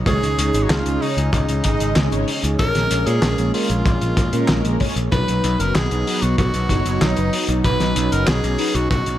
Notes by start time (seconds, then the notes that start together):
0.06 C#2 C#3 G#3 C#4 D#4 G#4 C#5, kick, closed hi-hat, shaker
0.22 C#2, closed hi-hat, shaker
0.38 C#2, closed hi-hat
0.54 G#1 G#3 D#4 C#5, closed hi-hat, shaker
0.63 F#4
0.70 C#2 F4, snare, clap, closed hi-hat, shaker
0.86 C#2, closed hi-hat, shaker
1.01 G#3 D#4 C#5, open hi-hat
1.17 C#2, closed hi-hat, shaker
1.33 C#2 D#4, kick, closed hi-hat, shaker
1.49 C#2, closed hi-hat, shaker
1.64 G#1 G#3 D#4 D#5, kick, closed hi-hat
1.80 G#1, closed hi-hat, shaker
1.96 C#2, snare, clap, closed hi-hat, shaker
2.12 G#1 G#3 D#4 C#5, closed hi-hat, shaker
2.28 open hi-hat
2.44 C#2, closed hi-hat, shaker
2.59 A#1 G#3 A#3 C#4 A#4, kick, closed hi-hat, shaker
2.75 A#1, snare, closed hi-hat, shaker
2.91 A#1, closed hi-hat
3.06 A#2 G#3 C#4 G#4 A#4, closed hi-hat, shaker
3.22 A#1, snare, clap, closed hi-hat, shaker
3.38 A#1, closed hi-hat, shaker
3.54 G#3 C#4 F4 A#4, open hi-hat
3.70 A#1, closed hi-hat, shaker
3.86 A#1, kick, closed hi-hat, shaker
4.01 A#1, closed hi-hat, shaker
4.17 A#1, kick, closed hi-hat
4.33 A#2 G#3 C#4 A#4, closed hi-hat, shaker
4.48 A#1, snare, clap, closed hi-hat, shaker
4.65 A#1, closed hi-hat, shaker
4.80 G#3 C#4 C#5, kick, open hi-hat
4.96 A#1, closed hi-hat, shaker
5.12 B1 F#3 B3 D#4 B4, kick, closed hi-hat, shaker
5.28 B1, closed hi-hat, shaker
5.44 B1, closed hi-hat
5.59 F#1 F#3 D#4 A#4 B4, closed hi-hat, shaker
5.75 B1 G#4, snare, clap, closed hi-hat, shaker
5.91 B1, closed hi-hat, shaker
6.07 F#3 D#4 B4, open hi-hat
6.22 B1 F#4, closed hi-hat, shaker
6.38 B1 F#4, kick, closed hi-hat, shaker
6.54 B1, closed hi-hat, shaker
6.69 F#1 F#3 D#4 C#5, kick, closed hi-hat
6.86 F#1, closed hi-hat, shaker
7.01 B1 D#4, snare, clap, closed hi-hat, shaker
7.17 F#1 F#3 D#4 B4, closed hi-hat, shaker
7.33 open hi-hat
7.48 B1, closed hi-hat, shaker
7.64 B1 F#3 C#4 D#4 B4, kick, closed hi-hat, shaker
7.80 B1, snare, closed hi-hat, shaker
7.96 B1, closed hi-hat
8.12 F#1 F#3 D#4 A#4 B4, closed hi-hat, shaker
8.27 B1 G#4, snare, clap, closed hi-hat, shaker
8.43 B1, closed hi-hat, shaker
8.58 F#3 D#4 B4, open hi-hat
8.75 B1 F#4, closed hi-hat, shaker
8.91 B1 F#4, kick, closed hi-hat, shaker
9.06 B1, closed hi-hat, shaker